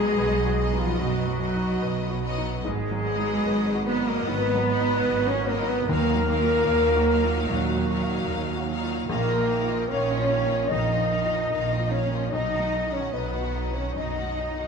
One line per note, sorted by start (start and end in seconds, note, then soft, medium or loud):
0.00 0.96 B1 medium
0.00 0.57 F#3 medium
0.00 1.27 F#3 medium
0.00 0.80 G#3 medium
0.00 0.57 B3 medium
0.00 0.34 D#4 medium
0.00 0.77 G#4 loud
0.00 0.80 G#4 loud
0.00 0.58 D#5 medium
0.18 0.90 B1 medium
0.18 0.62 B4 medium
0.45 0.89 F#4 medium
0.59 1.39 F#3 medium
0.59 1.40 B3 medium
0.59 1.40 D#5 medium
0.73 1.16 D#4 medium
0.79 1.00 F3 medium
0.79 1.00 F4 medium
0.79 1.00 F4 loud
0.99 1.73 B1 medium
0.99 1.44 F#2 medium
0.99 2.23 F#3 medium
0.99 2.20 F#4 loud
0.99 2.23 F#4 medium
1.27 1.71 F#3 medium
1.40 2.21 F#3 medium
1.40 2.22 B3 medium
1.40 2.22 D#5 medium
1.56 1.99 D#4 medium
1.82 2.55 B1 medium
1.82 2.26 B4 medium
2.10 2.53 F#4 medium
2.23 2.63 F#3 medium
2.23 2.63 B3 medium
2.23 2.63 D#5 medium
2.37 2.64 D#4 medium
2.64 3.36 G#1 medium
2.64 4.23 G#2 medium
2.64 3.82 G#3 loud
2.64 3.82 G#4 loud
2.91 3.35 F#3 medium
3.04 3.84 F#3 medium
3.04 3.85 B3 medium
3.04 3.85 D#5 medium
3.18 3.62 D#4 medium
3.46 4.18 G#1 medium
3.46 3.89 B4 medium
3.74 4.17 F#4 medium
3.86 4.66 F#3 medium
3.86 4.66 B3 medium
3.86 4.07 B3 loud
3.86 4.07 B4 loud
3.86 4.66 D#5 medium
4.00 4.43 D#4 medium
4.07 4.27 A#3 medium
4.07 4.27 A#4 medium
4.07 4.27 A#4 loud
4.27 4.98 G#1 medium
4.27 4.70 D#3 medium
4.27 5.28 B3 loud
4.27 5.28 B4 loud
4.27 5.29 B4 loud
4.54 4.97 F#3 medium
4.67 5.46 F#3 medium
4.67 5.46 B3 medium
4.67 5.47 D#5 medium
4.81 5.24 D#4 medium
5.08 5.79 G#1 medium
5.08 5.50 B4 medium
5.28 5.48 C#4 medium
5.28 5.48 C#5 loud
5.35 5.77 F#4 medium
5.48 5.88 F#3 medium
5.48 5.69 A#3 medium
5.48 5.88 B3 medium
5.48 5.68 A#4 loud
5.48 5.68 A#4 medium
5.48 5.88 D#5 medium
5.62 5.88 D#4 medium
5.68 5.89 B3 medium
5.68 5.88 B4 medium
5.68 5.88 B4 loud
5.87 6.60 D#2 medium
5.87 7.46 D#2 medium
5.87 7.06 D#3 medium
5.87 6.28 F#3 medium
5.87 7.47 A#3 loud
5.87 6.28 D#4 medium
5.87 7.49 A#4 loud
5.87 7.46 A#4 loud
5.87 6.28 F5 medium
6.15 6.58 F#3 medium
6.29 7.08 F#3 medium
6.29 7.08 D#4 medium
6.29 7.08 F5 medium
6.43 6.85 F4 medium
6.69 7.40 D#2 medium
6.69 7.12 A#4 medium
6.96 7.39 F#4 medium
7.10 7.88 F#3 medium
7.10 7.88 D#4 medium
7.10 7.89 F5 medium
7.23 7.66 F4 medium
7.49 8.20 D#2 medium
7.49 7.92 A#2 medium
7.49 8.70 F#3 medium
7.49 8.68 F#4 medium
7.49 8.70 F#4 loud
7.77 8.19 F#3 medium
7.90 8.68 F#3 medium
7.90 8.67 D#4 medium
7.90 8.68 F5 medium
8.03 8.46 F5 medium
8.29 9.00 D#2 medium
8.29 8.73 A#4 medium
8.56 8.99 F#4 medium
8.68 9.09 F#3 medium
8.68 9.08 D#4 medium
8.68 9.09 F5 medium
8.83 9.10 F4 medium
9.09 10.67 A#1 medium
9.09 9.81 A#1 medium
9.09 9.29 D#3 medium
9.09 9.87 A#3 medium
9.09 9.28 D#4 medium
9.09 9.86 A#4 loud
9.09 9.87 A#4 medium
9.09 9.29 F5 medium
9.29 9.51 F3 medium
9.29 9.50 F4 medium
9.29 9.50 D#5 medium
9.36 9.79 A#3 medium
9.50 9.71 D#3 medium
9.50 9.70 D#4 medium
9.50 9.70 F5 medium
9.63 10.06 F4 medium
9.69 9.91 F3 medium
9.69 9.90 F4 medium
9.69 9.91 D#5 medium
9.89 10.62 A#1 medium
9.89 10.10 D#3 medium
9.89 10.72 C#4 medium
9.89 10.09 D#4 medium
9.89 10.34 A#4 medium
9.89 10.71 C#5 loud
9.89 10.71 C#5 medium
9.89 10.10 F5 medium
10.09 10.31 F3 medium
10.09 10.30 F4 medium
10.09 10.32 D#5 medium
10.18 10.61 F4 medium
10.29 10.52 D#3 medium
10.29 10.50 D#4 medium
10.29 10.52 F5 medium
10.45 10.88 A#3 medium
10.50 10.72 F3 medium
10.50 10.71 F4 medium
10.50 10.72 D#5 medium
10.69 11.43 A#1 medium
10.69 11.14 F2 medium
10.69 10.91 D#3 medium
10.69 10.90 D#4 medium
10.69 11.93 D#4 medium
10.69 11.92 D#5 loud
10.69 11.93 D#5 medium
10.69 10.90 F5 medium
10.91 11.12 F3 medium
10.91 11.12 F4 medium
10.91 11.11 D#5 medium
10.98 11.41 A#3 medium
11.11 11.33 D#3 medium
11.11 11.32 D#4 medium
11.11 11.32 F5 medium
11.24 11.68 F4 soft
11.33 11.53 F3 medium
11.33 11.53 F4 medium
11.33 11.53 D#5 medium
11.51 12.24 A#1 medium
11.51 11.71 D#3 medium
11.51 11.71 D#4 medium
11.51 11.95 A#4 medium
11.51 11.71 F5 medium
11.73 11.93 F3 medium
11.73 11.93 F4 medium
11.73 11.94 D#5 medium
11.79 12.22 F4 medium
11.91 12.14 D#3 medium
11.91 12.33 C#4 medium
11.91 12.13 D#4 medium
11.91 12.32 C#5 medium
11.91 12.33 C#5 medium
11.91 12.13 F5 medium
12.06 12.33 A#3 medium
12.13 12.34 F3 medium
12.13 12.33 F4 medium
12.13 12.33 D#5 medium
12.31 13.92 B1 medium
12.31 13.05 B1 medium
12.31 12.52 F#3 medium
12.31 12.92 D#4 medium
12.31 12.52 D#4 medium
12.31 12.93 D#5 loud
12.31 12.93 D#5 medium
12.31 12.52 D#5 medium
12.53 12.74 D#3 medium
12.53 12.74 F#4 medium
12.53 12.74 F#5 medium
12.59 13.03 F#3 soft
12.73 12.94 F#3 medium
12.73 12.94 D#4 medium
12.73 12.94 D#5 medium
12.86 13.30 D#4 soft
12.93 13.15 D#3 medium
12.93 13.14 C#4 medium
12.93 13.14 F#4 medium
12.93 13.14 C#5 medium
12.93 13.14 F#5 medium
13.13 13.86 B1 medium
13.13 13.33 F#3 medium
13.13 13.75 B3 medium
13.13 13.33 D#4 medium
13.13 13.75 B4 medium
13.13 13.32 D#5 medium
13.13 13.57 D#5 medium
13.33 13.55 D#3 medium
13.33 13.55 F#4 medium
13.33 13.54 F#5 soft
13.41 13.85 F#4 soft
13.54 13.75 F#3 medium
13.54 13.75 D#4 medium
13.54 13.75 D#5 medium
13.69 14.12 D#4 soft
13.74 13.96 D#3 soft
13.74 13.96 C#4 medium
13.74 13.96 F#4 soft
13.74 13.96 C#5 medium
13.74 13.95 F#5 soft
13.94 14.67 B1 medium
13.94 14.39 F#2 soft
13.94 14.15 F#3 medium
13.94 14.15 D#4 medium
13.94 14.67 D#4 medium
13.94 14.67 D#5 medium
13.94 14.15 D#5 medium
13.94 14.67 D#5 medium
14.16 14.37 D#3 soft
14.16 14.37 F#4 soft
14.16 14.37 F#5 soft
14.23 14.67 F#3 soft
14.36 14.57 F#3 soft
14.36 14.58 D#4 soft
14.36 14.57 D#5 medium
14.51 14.67 D#4 soft
14.57 14.67 D#3 soft
14.57 14.67 F#4 soft
14.57 14.67 F#5 soft